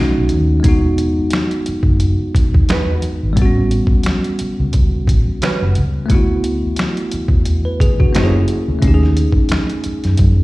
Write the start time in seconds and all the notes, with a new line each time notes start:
Already playing: B1 A3 C#4 D#4
0.00 F#4
0.17 B1
0.29 D#2, closed hi-hat
0.60 G#3 B3
0.64 E1 D#4, kick, closed hi-hat
0.69 F#4
0.98 closed hi-hat
1.19 muted fingered electric bass stroke
1.30 finger snap, snare, closed hi-hat
1.51 closed hi-hat
1.66 muted fingered electric bass stroke, closed hi-hat
1.83 F#1, kick
2.00 closed hi-hat
2.35 E1, kick, closed hi-hat
2.54 E2, kick
2.69 E2 G#3 D#4 F#4 B4, finger snap, snare, closed hi-hat
3.02 closed hi-hat
3.23 G#1
3.33 G3 B3, kick, closed hi-hat
3.38 A1 C4
3.42 C#4 F#4
3.71 closed hi-hat
3.87 muted fingered electric bass stroke, kick
4.03 finger snap, snare, closed hi-hat
4.24 closed hi-hat
4.39 muted fingered electric bass stroke, closed hi-hat
4.60 C#2
4.73 C#2, kick, closed hi-hat
5.07 A1, kick, closed hi-hat
5.42 G3 C#4 F#4 B4, finger snap, snare, closed hi-hat
5.62 F#1
5.75 C#2, closed hi-hat
6.06 A3 B3, closed hi-hat
6.10 D2 E4, kick
6.14 F#4
6.44 closed hi-hat
6.64 muted fingered electric bass stroke
6.76 finger snap, snare, closed hi-hat
6.97 closed hi-hat
7.11 muted fingered electric bass stroke, closed hi-hat
7.28 E2, kick
7.45 closed hi-hat
7.65 B4
7.80 D2 G#4, kick, closed hi-hat
8.00 D3 F#4, kick
8.13 F#1 A#3 C#4 E4 F#4, finger snap, snare, closed hi-hat
8.17 G4 C#5
8.24 G#4
8.48 closed hi-hat
8.68 D2
8.79 A3 C#4, kick, closed hi-hat
8.83 D#2 D#4
8.87 G4
8.94 G#4
9.03 snare
9.17 closed hi-hat
9.32 muted fingered electric bass stroke, kick
9.49 finger snap, snare, closed hi-hat
9.70 closed hi-hat
9.84 muted fingered electric bass stroke, closed hi-hat
10.04 F#2, snare, closed hi-hat
10.17 F#2, kick, closed hi-hat